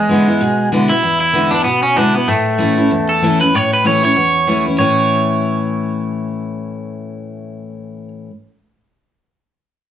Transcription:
Already playing: E2 G#3
0.09 D3 G#3 B3 E4
0.28 B3 E4
0.41 B2
0.72 D3 G#3 B3 E4
0.89 B3 E4
1.03 E2
1.21 E4
1.33 D3 G#3 B3 E4
1.51 B3 D4 E4
1.64 B2 B3
1.83 C#4
1.96 D3 G#3 B3 D4 E4
2.15 B3 E4
2.28 A2 A3
2.58 E3 A3 C#4 E4
2.77 C#4 E4
2.91 E2
3.09 A4
3.22 E3 A3 C#4 E4
3.41 C#4 E4 B4
3.54 A2 C#5
3.73 B4
3.84 E3 A3 C#4 E4 C#5
4.02 C#4 E4 C#5
4.16 E2
4.47 E3 A3 C#4 E4
4.66 C#4 E4
4.79 A2 E3 A3 C#4 E4 C#5

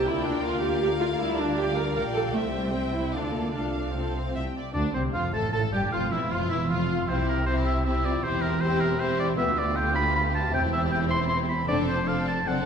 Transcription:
0.04 D2 D3 A#3 E4 F4 A#4 D5 G5
0.23 D4
0.41 A#3 F4 F5
0.60 G4
0.80 A3 G4 A#4 D5
1.00 F4
1.18 D2 D3 G3 E4 F4
1.38 D4
1.57 G3 F4 G4 D5 F5
1.76 A#4
1.96 A#1 A#2 G3 F4 A#4 D5 G5
2.14 A4
2.33 C2 C3 G3 A3 E4 C5 E5 G5
2.54 G3
2.73 G3 C4 E4 E5
2.94 E4
3.12 D2 D3 A3 D4 F4 A4 D5 F5
3.33 A#3
3.52 C2 C3 A3 D4 F4 A4 F5
3.94 A3 C4 F4 A4
4.15 C5
4.34 C2 C3 G3 E4 E5 G5
4.56 D5
4.74 D2 D3 D4 D5
4.94 C2 C3 C4 C5
5.13 F1 F2 F3 F4 F5
5.33 A1 A2 A3 A4 A5
5.52 A1 A2 A3 A4 A5
5.72 G1 G2 G3 G4 G5
5.92 F1 F2 F3 F4 F5
6.11 E1 E2 E3 E4 E5
6.31 F1 F2 F3 F4 F5
6.50 E1 E2 E3 E4 E5
6.69 F1 F2 F3 F4 F5
7.09 C2 C3 C4 E4 G4 C5
7.28 A#4
7.46 C4 E4 G4 C5
7.65 E5
7.86 C4 E4 G4 E5
8.05 F4 D5
8.23 E1 E2 C4 E4 G4 C5
8.42 A#4
8.61 C4 E4 G4 C5
8.80 A#4
8.99 C4 E4 G4 C5
9.19 D5
9.37 D2 B3 F4 G4 E5
9.58 D5
9.76 G5
9.95 B5
10.15 B5
10.35 A5
10.52 E1 E2 C4 E4 G5
10.73 E5
10.92 G5
11.10 C6
11.29 C6
11.49 B5
11.68 F1 F2 C4 D4 A4 D5
11.88 C5
12.07 C4 D4 A4 F5
12.28 A5
12.47 F#1 F#2 C4 D4 A4 F#5

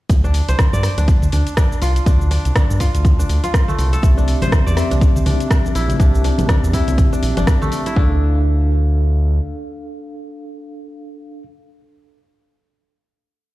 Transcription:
0.10 D2, kick, closed hi-hat, shaker
0.24 D4, shaker
0.34 open hi-hat, shaker
0.48 C2 C5, closed hi-hat, shaker
0.59 kick, cross-stick, closed hi-hat, mid tom, shaker
0.73 G2 D5, shaker
0.83 cross-stick, open hi-hat, shaker
0.98 D2 D4, closed hi-hat, shaker
1.08 kick, closed hi-hat, shaker
1.22 mid tom, shaker
1.32 D2 D4, open hi-hat, shaker
1.47 closed hi-hat, shaker
1.57 D4, kick, cross-stick, closed hi-hat, shaker
1.72 shaker
1.82 C2 F4, open hi-hat, shaker
1.96 closed hi-hat, shaker
2.06 D2 D4, kick, closed hi-hat, shaker
2.21 shaker
2.31 D4, open hi-hat, shaker
2.45 C2, closed hi-hat, shaker
2.55 D4, kick, cross-stick, closed hi-hat, mid tom, shaker
2.70 G2, shaker
2.80 F4, kick, open hi-hat, shaker
2.94 D2, closed hi-hat, shaker
3.05 kick, closed hi-hat, mid tom, shaker
3.19 D4, shaker
3.29 D2, open hi-hat, shaker
3.44 F4, closed hi-hat, shaker
3.54 kick, cross-stick, closed hi-hat, shaker
3.68 A3, mid tom, shaker
3.78 C2, open hi-hat, shaker
3.93 A4, closed hi-hat, shaker
4.02 C2 C4 G4 E5, kick, closed hi-hat, muted conga, shaker
4.17 D4, shaker
4.28 open hi-hat, shaker
4.42 A#1 C5, closed hi-hat, muted conga, high conga, low conga, shaker
4.52 kick, cross-stick, closed hi-hat, mid tom, shaker
4.66 E2 D5, shaker
4.77 C4 G4 E5, cross-stick, open hi-hat, high conga, shaker
4.91 C2 D4, closed hi-hat, muted conga, low conga, shaker
5.01 kick, closed hi-hat, shaker
5.16 mid tom, shaker
5.26 C2 D4, open hi-hat, muted conga, high conga, low conga, shaker
5.40 closed hi-hat, shaker
5.51 D4, kick, cross-stick, closed hi-hat, shaker
5.65 muted conga, high conga, shaker
5.75 A#1 E4, open hi-hat, shaker
5.89 closed hi-hat, low conga, shaker
6.00 C2 C4 D4 G4 E5, kick, closed hi-hat, muted conga, shaker
6.15 shaker
6.24 D4, open hi-hat, shaker
6.38 A#1, closed hi-hat, muted conga, high conga, low conga, shaker
6.49 D4, kick, cross-stick, closed hi-hat, mid tom, shaker
6.63 E2, shaker
6.73 C4 E4 G4 E5, kick, open hi-hat, shaker
6.88 C2, closed hi-hat, muted conga, low conga, shaker
6.98 A#1, kick, closed hi-hat, mid tom, shaker
7.13 D4, shaker
7.23 A#1, open hi-hat, muted conga, high conga, shaker
7.37 G1 D4, closed hi-hat, high conga, shaker
7.47 kick, cross-stick, closed hi-hat, shaker
7.62 A3, mid tom, muted conga, shaker
7.72 open hi-hat, shaker
7.86 E4, closed hi-hat, shaker
7.96 D2 D4 A4 F5, kick

